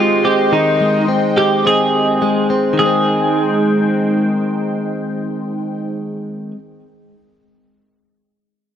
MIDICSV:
0, 0, Header, 1, 4, 480
1, 0, Start_track
1, 0, Key_signature, -4, "major"
1, 0, Tempo, 566038
1, 438, Time_signature, 4, 2, 24, 8
1, 7425, End_track
2, 0, Start_track
2, 0, Title_t, "Analog synth pad"
2, 0, Program_c, 0, 89
2, 0, Note_on_c, 0, 56, 65
2, 0, Note_on_c, 0, 75, 58
2, 0, Note_on_c, 0, 79, 61
2, 0, Note_on_c, 0, 84, 69
2, 2326, Note_off_c, 0, 56, 0
2, 2327, Note_off_c, 0, 79, 0
2, 2327, Note_off_c, 0, 84, 0
2, 2328, Note_off_c, 0, 75, 0
2, 2357, Note_on_c, 0, 63, 59
2, 2357, Note_on_c, 0, 72, 55
2, 2357, Note_on_c, 0, 79, 66
2, 2359, Note_on_c, 0, 56, 61
2, 4922, Note_off_c, 0, 63, 0
2, 4922, Note_off_c, 0, 72, 0
2, 4922, Note_off_c, 0, 79, 0
2, 4923, Note_off_c, 0, 56, 0
2, 7425, End_track
3, 0, Start_track
3, 0, Title_t, "Clean electric guitar"
3, 0, Program_c, 1, 27
3, 0, Note_on_c, 1, 65, 70
3, 210, Note_on_c, 1, 67, 64
3, 213, Note_off_c, 1, 65, 0
3, 448, Note_on_c, 1, 63, 62
3, 451, Note_off_c, 1, 67, 0
3, 890, Note_off_c, 1, 63, 0
3, 1167, Note_on_c, 1, 67, 80
3, 1410, Note_off_c, 1, 67, 0
3, 1415, Note_on_c, 1, 68, 87
3, 2092, Note_off_c, 1, 68, 0
3, 2367, Note_on_c, 1, 68, 64
3, 5520, Note_off_c, 1, 68, 0
3, 7425, End_track
4, 0, Start_track
4, 0, Title_t, "Clean electric guitar"
4, 0, Program_c, 2, 27
4, 0, Note_on_c, 2, 51, 65
4, 0, Note_on_c, 2, 56, 55
4, 0, Note_on_c, 2, 60, 61
4, 0, Note_on_c, 2, 67, 61
4, 202, Note_off_c, 2, 60, 0
4, 205, Note_on_c, 2, 60, 48
4, 439, Note_off_c, 2, 51, 0
4, 443, Note_on_c, 2, 51, 62
4, 680, Note_off_c, 2, 56, 0
4, 683, Note_on_c, 2, 56, 53
4, 915, Note_off_c, 2, 60, 0
4, 919, Note_on_c, 2, 60, 49
4, 1157, Note_off_c, 2, 67, 0
4, 1160, Note_on_c, 2, 67, 52
4, 1394, Note_off_c, 2, 60, 0
4, 1397, Note_on_c, 2, 60, 56
4, 1879, Note_off_c, 2, 56, 0
4, 1882, Note_on_c, 2, 56, 48
4, 1907, Note_off_c, 2, 67, 0
4, 2117, Note_off_c, 2, 60, 0
4, 2120, Note_on_c, 2, 60, 47
4, 2313, Note_off_c, 2, 51, 0
4, 2317, Note_on_c, 2, 51, 57
4, 2369, Note_off_c, 2, 56, 0
4, 2373, Note_on_c, 2, 56, 60
4, 2417, Note_off_c, 2, 60, 0
4, 2420, Note_on_c, 2, 60, 57
4, 5529, Note_off_c, 2, 51, 0
4, 5557, Note_off_c, 2, 56, 0
4, 5581, Note_off_c, 2, 60, 0
4, 7425, End_track
0, 0, End_of_file